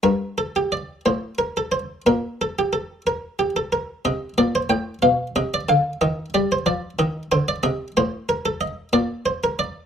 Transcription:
<<
  \new Staff \with { instrumentName = "Harpsichord" } { \time 6/8 \key c \dorian \tempo 4. = 61 bes'8 a'16 g'16 d''8 c''8 bes'16 a'16 c''8 | bes'8 a'16 g'16 a'8 bes'8 g'16 a'16 bes'8 | ees''8 d''16 c''16 g''8 f''8 ees''16 d''16 f''8 | ees''8 d''16 c''16 d''8 ees''8 c''16 d''16 ees''8 |
\key bes \major c''8 bes'16 a'16 ees''8 d''8 c''16 bes'16 d''8 | }
  \new Staff \with { instrumentName = "Harpsichord" } { \clef bass \time 6/8 \key c \dorian g,4. a,4. | bes,2. | c8 bes,8 a,8 b,8 c8 d8 | ees8 g8 f8 ees8 d8 c8 |
\key bes \major a,4. bes,4. | }
>>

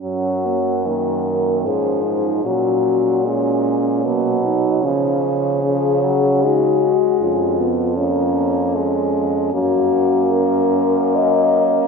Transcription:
<<
  \new Staff \with { instrumentName = "French horn" } { \time 3/4 \key fis \major \tempo 4 = 76 r4 ais'4 gis'4 | fis'4 cis'4. r8 | r4 gis'4 fis'4 | eis'4 cis'4. r8 |
fis'4 ais'4 dis''4 | }
  \new Staff \with { instrumentName = "French horn" } { \time 3/4 \key fis \major cis'8 ais8 ais4 cis'8 dis'8 | cis'4 cis'4 ais8 dis'8 | cis'4 cis'4 dis'8 r8 | cis'8 b8 cis'4 cis'4 |
cis'2. | }
  \new Staff \with { instrumentName = "French horn" } { \clef bass \time 3/4 \key fis \major fis4 dis4 eis4 | fis4 gis4 fis4 | eis4 eis8 fis8 gis4~ | gis8 r8 ais4 gis4 |
ais2. | }
  \new Staff \with { instrumentName = "French horn" } { \clef bass \time 3/4 \key fis \major fis,2 gis,4 | ais,2 b,4 | cis2~ cis8 r8 | eis,2. |
fis,2. | }
>>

